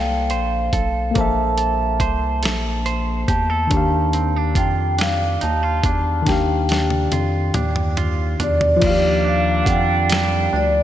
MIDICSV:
0, 0, Header, 1, 7, 480
1, 0, Start_track
1, 0, Tempo, 851064
1, 654, Time_signature, 6, 3, 24, 8
1, 6109, End_track
2, 0, Start_track
2, 0, Title_t, "Vibraphone"
2, 0, Program_c, 0, 11
2, 0, Note_on_c, 0, 77, 78
2, 666, Note_on_c, 0, 81, 93
2, 680, Note_off_c, 0, 77, 0
2, 1850, Note_off_c, 0, 81, 0
2, 1857, Note_on_c, 0, 81, 85
2, 2579, Note_on_c, 0, 79, 79
2, 2597, Note_off_c, 0, 81, 0
2, 2822, Note_on_c, 0, 77, 91
2, 2823, Note_off_c, 0, 79, 0
2, 3062, Note_on_c, 0, 81, 96
2, 3065, Note_off_c, 0, 77, 0
2, 3538, Note_on_c, 0, 79, 86
2, 3552, Note_off_c, 0, 81, 0
2, 4473, Note_off_c, 0, 79, 0
2, 4755, Note_on_c, 0, 74, 79
2, 5202, Note_off_c, 0, 74, 0
2, 5234, Note_on_c, 0, 77, 78
2, 5430, Note_off_c, 0, 77, 0
2, 5432, Note_on_c, 0, 78, 67
2, 5462, Note_off_c, 0, 78, 0
2, 5467, Note_on_c, 0, 79, 89
2, 5955, Note_off_c, 0, 79, 0
2, 5956, Note_on_c, 0, 74, 85
2, 6109, Note_off_c, 0, 74, 0
2, 6109, End_track
3, 0, Start_track
3, 0, Title_t, "Tine electric piano"
3, 0, Program_c, 1, 4
3, 0, Control_c, 1, 64, 127
3, 0, Note_on_c, 1, 58, 61
3, 0, Note_on_c, 1, 69, 48
3, 0, Note_on_c, 1, 72, 55
3, 0, Note_on_c, 1, 74, 66
3, 617, Note_off_c, 1, 58, 0
3, 625, Note_on_c, 1, 58, 57
3, 626, Note_off_c, 1, 69, 0
3, 635, Note_off_c, 1, 72, 0
3, 645, Note_off_c, 1, 74, 0
3, 645, Note_on_c, 1, 69, 54
3, 663, Note_on_c, 1, 72, 54
3, 681, Note_on_c, 1, 76, 72
3, 2057, Note_off_c, 1, 58, 0
3, 2067, Note_off_c, 1, 69, 0
3, 2071, Note_on_c, 1, 51, 58
3, 2076, Note_off_c, 1, 72, 0
3, 2085, Note_off_c, 1, 76, 0
3, 2087, Note_on_c, 1, 62, 60
3, 2102, Control_c, 1, 64, 0
3, 2108, Note_on_c, 1, 67, 58
3, 2125, Note_on_c, 1, 77, 65
3, 2201, Control_c, 1, 64, 127
3, 3500, Note_off_c, 1, 51, 0
3, 3508, Note_off_c, 1, 62, 0
3, 3509, Note_on_c, 1, 51, 69
3, 3518, Note_off_c, 1, 67, 0
3, 3526, Note_on_c, 1, 62, 57
3, 3527, Note_off_c, 1, 77, 0
3, 3547, Note_on_c, 1, 67, 66
3, 3564, Note_on_c, 1, 77, 72
3, 4939, Note_off_c, 1, 51, 0
3, 4943, Note_on_c, 1, 53, 73
3, 4947, Note_off_c, 1, 62, 0
3, 4958, Note_off_c, 1, 67, 0
3, 4964, Note_on_c, 1, 65, 63
3, 4966, Note_off_c, 1, 77, 0
3, 4975, Note_off_c, 1, 65, 0
3, 4981, Control_c, 1, 64, 0
3, 4981, Note_on_c, 1, 65, 49
3, 5001, Note_on_c, 1, 77, 80
3, 5014, Note_off_c, 1, 65, 0
3, 5018, Note_on_c, 1, 67, 65
3, 5066, Control_c, 1, 64, 127
3, 6109, Note_off_c, 1, 53, 0
3, 6109, Note_off_c, 1, 67, 0
3, 6109, Note_off_c, 1, 77, 0
3, 6109, End_track
4, 0, Start_track
4, 0, Title_t, "Clean electric guitar"
4, 0, Program_c, 2, 27
4, 0, Note_on_c, 2, 58, 66
4, 0, Note_on_c, 2, 60, 62
4, 0, Note_on_c, 2, 69, 56
4, 0, Note_on_c, 2, 72, 55
4, 165, Note_off_c, 2, 72, 0
4, 172, Note_on_c, 2, 72, 68
4, 406, Note_off_c, 2, 69, 0
4, 412, Note_on_c, 2, 69, 50
4, 648, Note_off_c, 2, 58, 0
4, 650, Note_on_c, 2, 58, 65
4, 667, Note_off_c, 2, 60, 0
4, 884, Note_off_c, 2, 69, 0
4, 890, Note_on_c, 2, 69, 54
4, 1125, Note_off_c, 2, 72, 0
4, 1132, Note_on_c, 2, 72, 63
4, 1366, Note_off_c, 2, 69, 0
4, 1372, Note_on_c, 2, 69, 64
4, 1605, Note_off_c, 2, 72, 0
4, 1612, Note_on_c, 2, 72, 69
4, 1848, Note_off_c, 2, 69, 0
4, 1850, Note_on_c, 2, 67, 57
4, 1972, Note_off_c, 2, 67, 0
4, 1972, Note_on_c, 2, 69, 47
4, 2091, Note_on_c, 2, 51, 69
4, 2141, Note_off_c, 2, 69, 0
4, 2141, Note_off_c, 2, 72, 0
4, 2335, Note_on_c, 2, 60, 54
4, 2352, Note_off_c, 2, 58, 0
4, 2461, Note_off_c, 2, 60, 0
4, 2461, Note_on_c, 2, 62, 54
4, 2575, Note_on_c, 2, 65, 62
4, 2805, Note_off_c, 2, 62, 0
4, 2811, Note_on_c, 2, 62, 63
4, 3050, Note_off_c, 2, 65, 0
4, 3052, Note_on_c, 2, 63, 69
4, 3174, Note_off_c, 2, 63, 0
4, 3174, Note_on_c, 2, 65, 57
4, 3300, Note_off_c, 2, 62, 0
4, 3302, Note_on_c, 2, 62, 56
4, 3536, Note_off_c, 2, 51, 0
4, 3538, Note_on_c, 2, 51, 73
4, 3780, Note_off_c, 2, 62, 0
4, 3782, Note_on_c, 2, 62, 57
4, 4013, Note_off_c, 2, 65, 0
4, 4019, Note_on_c, 2, 65, 61
4, 4253, Note_off_c, 2, 62, 0
4, 4255, Note_on_c, 2, 62, 62
4, 4496, Note_off_c, 2, 65, 0
4, 4499, Note_on_c, 2, 65, 70
4, 4736, Note_off_c, 2, 62, 0
4, 4739, Note_on_c, 2, 62, 57
4, 4971, Note_off_c, 2, 51, 0
4, 4973, Note_on_c, 2, 51, 84
4, 5213, Note_off_c, 2, 62, 0
4, 5215, Note_on_c, 2, 62, 65
4, 5455, Note_off_c, 2, 65, 0
4, 5457, Note_on_c, 2, 65, 70
4, 5697, Note_on_c, 2, 55, 67
4, 5937, Note_off_c, 2, 62, 0
4, 5939, Note_on_c, 2, 62, 73
4, 6109, Note_off_c, 2, 51, 0
4, 6109, Note_off_c, 2, 55, 0
4, 6109, Note_off_c, 2, 62, 0
4, 6109, Note_off_c, 2, 65, 0
4, 6109, End_track
5, 0, Start_track
5, 0, Title_t, "Horn section"
5, 0, Program_c, 3, 61
5, 4976, Note_on_c, 3, 62, 88
5, 4977, Note_on_c, 3, 55, 65
5, 4977, Note_on_c, 3, 58, 69
5, 6109, Note_off_c, 3, 55, 0
5, 6109, Note_off_c, 3, 58, 0
5, 6109, Note_off_c, 3, 62, 0
5, 6109, End_track
6, 0, Start_track
6, 0, Title_t, "Analog synth bass"
6, 0, Program_c, 4, 38
6, 0, Note_on_c, 4, 36, 86
6, 180, Note_on_c, 4, 34, 90
6, 188, Note_off_c, 4, 36, 0
6, 394, Note_off_c, 4, 34, 0
6, 415, Note_on_c, 4, 35, 74
6, 632, Note_off_c, 4, 35, 0
6, 658, Note_on_c, 4, 34, 96
6, 1131, Note_on_c, 4, 36, 89
6, 1139, Note_off_c, 4, 34, 0
6, 1383, Note_on_c, 4, 34, 97
6, 1391, Note_off_c, 4, 36, 0
6, 1836, Note_off_c, 4, 34, 0
6, 1855, Note_on_c, 4, 40, 77
6, 2072, Note_off_c, 4, 40, 0
6, 2097, Note_on_c, 4, 39, 108
6, 2573, Note_on_c, 4, 41, 82
6, 2581, Note_off_c, 4, 39, 0
6, 3031, Note_off_c, 4, 41, 0
6, 3064, Note_on_c, 4, 39, 98
6, 3276, Note_off_c, 4, 39, 0
6, 3294, Note_on_c, 4, 40, 86
6, 3511, Note_off_c, 4, 40, 0
6, 3539, Note_on_c, 4, 39, 99
6, 3994, Note_off_c, 4, 39, 0
6, 4020, Note_on_c, 4, 41, 93
6, 4234, Note_off_c, 4, 41, 0
6, 4258, Note_on_c, 4, 39, 94
6, 4713, Note_off_c, 4, 39, 0
6, 4740, Note_on_c, 4, 40, 82
6, 4955, Note_off_c, 4, 40, 0
6, 4978, Note_on_c, 4, 39, 100
6, 5433, Note_off_c, 4, 39, 0
6, 5453, Note_on_c, 4, 41, 82
6, 5911, Note_off_c, 4, 41, 0
6, 5942, Note_on_c, 4, 38, 99
6, 6109, Note_off_c, 4, 38, 0
6, 6109, End_track
7, 0, Start_track
7, 0, Title_t, "Drums"
7, 168, Note_on_c, 9, 42, 46
7, 225, Note_off_c, 9, 42, 0
7, 410, Note_on_c, 9, 36, 81
7, 411, Note_on_c, 9, 42, 68
7, 467, Note_off_c, 9, 36, 0
7, 468, Note_off_c, 9, 42, 0
7, 650, Note_on_c, 9, 42, 66
7, 653, Note_on_c, 9, 36, 113
7, 707, Note_off_c, 9, 42, 0
7, 709, Note_off_c, 9, 36, 0
7, 889, Note_on_c, 9, 42, 57
7, 945, Note_off_c, 9, 42, 0
7, 1127, Note_on_c, 9, 36, 87
7, 1129, Note_on_c, 9, 42, 76
7, 1184, Note_off_c, 9, 36, 0
7, 1185, Note_off_c, 9, 42, 0
7, 1368, Note_on_c, 9, 42, 67
7, 1384, Note_on_c, 9, 38, 107
7, 1425, Note_off_c, 9, 42, 0
7, 1441, Note_off_c, 9, 38, 0
7, 1612, Note_on_c, 9, 42, 44
7, 1669, Note_off_c, 9, 42, 0
7, 1851, Note_on_c, 9, 36, 83
7, 1852, Note_on_c, 9, 42, 73
7, 1907, Note_off_c, 9, 36, 0
7, 1908, Note_off_c, 9, 42, 0
7, 2091, Note_on_c, 9, 42, 71
7, 2093, Note_on_c, 9, 36, 110
7, 2147, Note_off_c, 9, 42, 0
7, 2150, Note_off_c, 9, 36, 0
7, 2331, Note_on_c, 9, 42, 56
7, 2387, Note_off_c, 9, 42, 0
7, 2568, Note_on_c, 9, 36, 87
7, 2571, Note_on_c, 9, 42, 66
7, 2625, Note_off_c, 9, 36, 0
7, 2628, Note_off_c, 9, 42, 0
7, 2811, Note_on_c, 9, 42, 75
7, 2827, Note_on_c, 9, 38, 107
7, 2868, Note_off_c, 9, 42, 0
7, 2884, Note_off_c, 9, 38, 0
7, 3053, Note_on_c, 9, 42, 46
7, 3110, Note_off_c, 9, 42, 0
7, 3291, Note_on_c, 9, 36, 89
7, 3291, Note_on_c, 9, 42, 71
7, 3347, Note_off_c, 9, 36, 0
7, 3347, Note_off_c, 9, 42, 0
7, 3533, Note_on_c, 9, 42, 80
7, 3534, Note_on_c, 9, 36, 107
7, 3548, Note_on_c, 9, 38, 56
7, 3590, Note_off_c, 9, 42, 0
7, 3591, Note_off_c, 9, 36, 0
7, 3605, Note_off_c, 9, 38, 0
7, 3773, Note_on_c, 9, 42, 54
7, 3789, Note_on_c, 9, 38, 70
7, 3829, Note_off_c, 9, 42, 0
7, 3845, Note_off_c, 9, 38, 0
7, 3894, Note_on_c, 9, 48, 57
7, 3950, Note_off_c, 9, 48, 0
7, 4014, Note_on_c, 9, 42, 76
7, 4015, Note_on_c, 9, 48, 65
7, 4070, Note_off_c, 9, 42, 0
7, 4072, Note_off_c, 9, 48, 0
7, 4253, Note_on_c, 9, 42, 70
7, 4254, Note_on_c, 9, 47, 84
7, 4309, Note_off_c, 9, 42, 0
7, 4311, Note_off_c, 9, 47, 0
7, 4375, Note_on_c, 9, 45, 74
7, 4432, Note_off_c, 9, 45, 0
7, 4495, Note_on_c, 9, 42, 47
7, 4497, Note_on_c, 9, 45, 81
7, 4552, Note_off_c, 9, 42, 0
7, 4553, Note_off_c, 9, 45, 0
7, 4737, Note_on_c, 9, 42, 71
7, 4737, Note_on_c, 9, 43, 105
7, 4793, Note_off_c, 9, 42, 0
7, 4793, Note_off_c, 9, 43, 0
7, 4856, Note_on_c, 9, 43, 89
7, 4912, Note_off_c, 9, 43, 0
7, 4972, Note_on_c, 9, 42, 83
7, 4973, Note_on_c, 9, 49, 112
7, 4975, Note_on_c, 9, 36, 124
7, 5028, Note_off_c, 9, 42, 0
7, 5029, Note_off_c, 9, 49, 0
7, 5032, Note_off_c, 9, 36, 0
7, 5450, Note_on_c, 9, 36, 103
7, 5454, Note_on_c, 9, 42, 85
7, 5506, Note_off_c, 9, 36, 0
7, 5511, Note_off_c, 9, 42, 0
7, 5694, Note_on_c, 9, 42, 89
7, 5710, Note_on_c, 9, 38, 117
7, 5750, Note_off_c, 9, 42, 0
7, 5766, Note_off_c, 9, 38, 0
7, 6109, End_track
0, 0, End_of_file